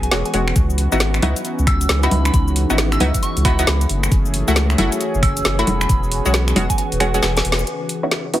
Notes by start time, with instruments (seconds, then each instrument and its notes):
Already playing: ambient pad E3 B4 F#5, analog synth pad B3 C#4 F#4 G#4
0.03 synth bell G#5, closed hi-hat
0.11 sub bass E1, synth stab G#3 C#4 F#4, synth bell G#5, snare
0.25 synth bell G#5, closed hi-hat
0.34 sub bass E1, synth stab G#3 C#4 F#4, open hi-hat
0.48 finger snap
0.56 sub bass C#2, analog synth pad E3 C#4, ambient pad C#4, kick, closed hi-hat, shaker
0.70 shaker
0.77 ambient pad G#4, open hi-hat
0.92 sub bass G#1, synth stab B3 D#4 E4 F#4, shaker
1.00 snare, shaker
1.14 finger snap, shaker
1.22 sub bass C#2, synth stab B3 D#4 E4 F#4, open hi-hat, high conga
1.36 closed hi-hat, shaker
1.41 ambient pad D#4
1.45 closed hi-hat, shaker
1.59 sub bass C#2, shaker
1.67 synth bell E6, finger snap, kick, open hi-hat
1.81 closed hi-hat, shaker
1.89 sub bass C#2, snare, shaker
2.03 synth stab B3 D#4 E4 F#4, synth bell B5, closed hi-hat, shaker
2.11 sub bass C#2, synth bell B5, open hi-hat, high conga
2.25 synth bell B5, finger snap, shaker
2.34 sub bass C#2, synth bell B5, kick, closed hi-hat, shaker
2.48 shaker
2.56 open hi-hat
2.70 sub bass G#1, synth stab B3 D#4 E4 F#4, shaker
2.78 snare, shaker
2.92 synth bell E6, finger snap, shaker
3.00 sub bass C#2, synth stab B3 D#4 E4 F#4, open hi-hat, high conga
3.14 kick, closed hi-hat, shaker
3.23 synth bell C#6, closed hi-hat, shaker
3.37 sub bass C#2, open hi-hat, shaker
3.45 synth stab B3 D#4 E4 F#4, synth bell B5, finger snap, kick, open hi-hat
3.59 synth stab B3 D#4 E4 F#4, closed hi-hat, shaker
3.67 sub bass C#2, snare, shaker
3.81 closed hi-hat, shaker
3.89 sub bass F#1, analog synth pad A3 C#4 G#4, ambient pad F#4, open hi-hat
4.03 finger snap, shaker
4.12 sub bass F#1, kick, closed hi-hat, shaker
4.26 shaker
4.31 ambient pad C#5, open hi-hat
4.48 sub bass C#2, synth stab A3 E4 F#4, shaker
4.56 ambient pad G#5, snare, shaker
4.70 finger snap, shaker
4.78 sub bass F#1, synth stab A3 E4 F#4, open hi-hat, high conga
4.92 closed hi-hat, shaker
5.01 closed hi-hat, shaker
5.15 sub bass F#1, shaker
5.23 synth bell E6, finger snap, kick, open hi-hat
5.37 closed hi-hat, shaker
5.45 sub bass F#1, snare, shaker
5.59 synth stab A3 E4 F#4, synth bell B5, closed hi-hat, shaker
5.67 sub bass E1, ambient pad E3, analog synth pad B3 F#4, synth bell B5, open hi-hat, high conga
5.81 synth bell B5, finger snap, shaker
5.89 sub bass E1, synth bell B5, kick, closed hi-hat, shaker
6.03 ambient pad B4, shaker
6.12 open hi-hat
6.26 sub bass B1, synth stab G#3 C#4 F#4, ambient pad F#5, shaker
6.34 snare, shaker
6.48 finger snap, closed hi-hat, shaker
6.56 sub bass E1, synth stab G#3 C#4 F#4, open hi-hat, high conga
6.70 synth bell G#5, kick, closed hi-hat, shaker
6.78 synth bell G#5, closed hi-hat, shaker
6.92 sub bass E1, open hi-hat, shaker
7.00 synth stab G#3 C#4 F#4, synth bell G#5, finger snap, open hi-hat
7.14 synth stab G#3 C#4 F#4, synth bell G#5, closed hi-hat, shaker
7.22 sub bass E1, synth bell G#5, snare, shaker
7.37 synth bell G#5, snare, closed hi-hat, shaker
7.45 sub bass E1, open hi-hat
7.52 snare
7.59 shaker
7.67 analog synth pad C#3 E3 C#4 F#4 G#4 B4, ambient pad C#4, closed hi-hat
7.89 open hi-hat
8.03 synth stab B3 C#4 D#4 E4 F#4, ambient pad G#4
8.11 snare
8.33 synth stab B3 C#4 D#4 E4 F#4, ambient pad D#4, open hi-hat